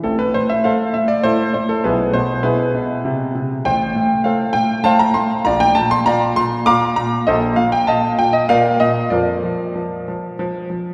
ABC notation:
X:1
M:3/4
L:1/16
Q:1/4=99
K:Am
V:1 name="Grand piano"
[CEA] B c e [Acf]2 e d [EAc]2 c A | [E^GB]2 c2 [EGB]6 z2 | [K:Bb] [cg]4 [Acf]2 g2 [cfa] b c'2 | [dfb] g a c' [dfb]2 c'2 [fbd']2 b2 |
[Ace]2 f g [efa]2 g e [Bdf]2 e2 | [FBd]8 z4 |]
V:2 name="Grand piano" clef=bass
[A,,,A,,]2 A,,2 A,,2 A,,2 A,,2 A,,2 | [B,,,B,,]2 B,,2 B,,2 B,,2 C,2 C,2 | [K:Bb] [A,,,A,,]2 A,,2 A,,2 A,,2 A,,2 A,,2 | [B,,,B,,]2 B,,2 B,,2 B,,2 B,,2 B,,2 |
[B,,,B,,]2 B,,2 B,,2 B,,2 B,,2 B,,2 | [F,,F,]2 F,2 F,2 F,2 F,2 F,2 |]